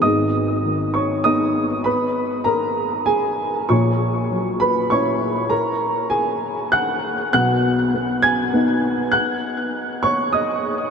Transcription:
<<
  \new Staff \with { instrumentName = "Upright piano" } { \time 3/4 \key gis \minor \tempo 4 = 100 <dis'' dis'''>4. <cis'' cis'''>8 <dis'' dis'''>4 | <b' b''>4 <ais' ais''>4 <gis' gis''>4 | <cis'' cis'''>4. <b' b''>8 <cis'' cis'''>4 | <ais' ais''>4 <gis' gis''>4 <fis'' fis'''>4 |
<fis'' fis'''>4. <gis'' gis'''>4. | <fis'' fis'''>4. <cis'' cis'''>8 <dis'' dis'''>8 r8 | }
  \new Staff \with { instrumentName = "Upright piano" } { \clef bass \time 3/4 \key gis \minor <gis,, gis,>4 dis4 <b dis'>4~ | <b dis'>2. | <ais,, ais,>4 fis4 <cis' e'>4~ | <cis' e'>2. |
<b,, b,>4 b4 <b dis'>4~ | <b dis'>2. | }
>>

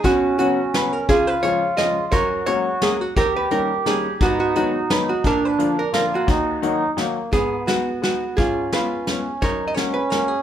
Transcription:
<<
  \new Staff \with { instrumentName = "Hollow-body jazz guitar" } { \time 3/4 \key ees \minor \tempo 4 = 173 << { fis'4 fis'4 b'8 bes'8 | aes'8 ces''8 des''4 ees''4 | des''4 des''4 aes'8 ges'8 | bes'8 ces''8 bes'4 aes'4 |
ges'8 ges'8 ges'4 ces''8 ges'8 | bes'8 ces''4 bes'8 bes'16 r16 ges'8~ | ges'2 r4 | \key gis \minor gis'4 fis'4 fis'4 |
gis'4 b'4. r8 | cis''8. dis''16 cis''8 b'8 ais'8 gis'8 | } \\ { cis'4. r4. | f'4. r4. | bes'4. r4. | g'4. r4. |
ces'4. r4. | d'4. r4 bes8~ | bes2 r4 | b4. r4. |
eis'4 eis'4. r8 | ais'4. r4. | } >> }
  \new Staff \with { instrumentName = "Accordion" } { \time 3/4 \key ees \minor cis'2. | f'2. | ges'2~ ges'8 r8 | g'2. |
ees'2. | d'2 f'4 | ees'4 ees'4 bes4 | \key gis \minor b2. |
cis'2 cis'4 | dis'4 cis'2 | }
  \new Staff \with { instrumentName = "Upright piano" } { \time 3/4 \key ees \minor b,4 <cis fis b cis' fis'>8 r8 <cis fis b cis' fis'>8 r8 | des4 <des f aes des' f'>8 r8 <des f aes des' f'>8 r8 | ges,4 <ges aes bes des' ges'>8 r8 <ges aes bes des' ges'>8 r8 | ees,4 <ees g bes des' ees'>8 r8 <ees g bes des' ees'>8 r8 |
aes,4 <ees ges aes ces' ees'>8 r8 <ees ges aes ces' ees'>8 r8 | bes,4 <d f bes d' f'>8 r8 <d f bes d' f'>8 r8 | ees,4 <ees ges bes ees' ges'>8 r8 <ees ges bes ees' ges'>8 r8 | \key gis \minor gis,4 <gis b dis' fis'>8 r8 <gis b dis' fis'>8 r8 |
gis,4 <gis b cis' eis'>8 r8 <gis b cis' eis'>8 r8 | fis,4 <gis ais cis' fis'>8 r8 <gis ais cis' fis'>8 r8 | }
  \new DrumStaff \with { instrumentName = "Drums" } \drummode { \time 3/4 <hh bd>4 hh4 <hh sn>4 | <hh bd>4 hh4 <hh sn>4 | <hh bd>4 hh4 <hh sn>4 | <hh bd>4 hh4 <hh sn>4 |
<hh bd>4 hh4 <hh sn>4 | <hh bd>4 hh4 <hh sn>4 | <hh bd>4 hh4 <hh sn>4 | <hh bd>4 <hh sn>4 <hh sn>4 |
<hh bd>4 <hh sn>4 <hh sn>4 | <hh bd>4 <hh sn>4 <hh sn>4 | }
>>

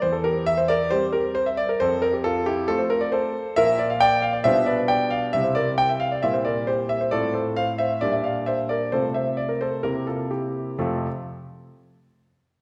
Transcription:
<<
  \new Staff \with { instrumentName = "Grand piano" } { \time 4/4 \key f \major \tempo 4 = 135 c''16 a'16 <g' bes'>8 e''16 c''16 <bes' d''>8 <g' c''>8 <g' bes'>8 c''16 e''16 d''16 bes'16 | <a' c''>8 bes'16 g'16 <f' a'>8 <e' g'>8 a'16 c''16 bes'16 d''16 <a' c''>4 | <bes' e''>8 d''16 f''16 <d'' g''>8 f''16 d''16 <c'' e''>8 <b' d''>8 <d'' g''>8 <d'' f''>8 | e''16 c''16 <bes' d''>8 g''16 e''16 f''16 d''16 e''16 c''16 <bes' d''>8 <g' c''>8 e''16 c''16 |
<a' d''>8 <a' c''>8 <c'' f''>8 <c'' e''>8 d''16 e''16 <d'' f''>8 <c'' e''>8 <bes' d''>8 | <a' c''>8 <c'' e''>8 d''16 bes'16 <a' c''>8 <g' bes'>8 <f' a'>8 <e' g'>4 | <f, c a c' f' a'>8 r2. r8 | }
  \new Staff \with { instrumentName = "Grand piano" } { \time 4/4 \key f \major e,2 <g c'>2 | f,2 <a c' f'>2 | <bes, f bes f'>2 <b, g d' f'>2 | <c g c' e'>2 <bes, g c' e'>2 |
<a, a c' f'>2 <bes, g d' g'>2 | <c a c' f'>2 <c bes c' e'>2 | r1 | }
>>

